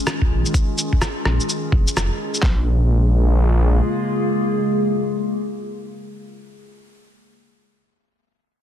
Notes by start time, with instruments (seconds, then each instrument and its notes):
Already playing: ambient pad D#3 G#3 C#4 F4 G#4
0.07 cross-stick, shaker
0.22 kick
0.31 detuned saw bass A#1
0.46 shaker
0.54 kick, shaker
0.78 shaker
0.93 kick
1.02 cross-stick, shaker
1.25 detuned saw bass A#1, cross-stick
1.40 shaker
1.49 shaker
1.72 detuned saw bass F1, kick
1.88 shaker
1.96 detuned saw bass F1, cross-stick, shaker
2.34 shaker
2.43 detuned saw bass A#1, ambient pad C#3, kick, snare, clap
2.53 ambient pad G#3
2.61 ambient pad A#3
2.66 ambient pad F4
2.73 ambient pad G#4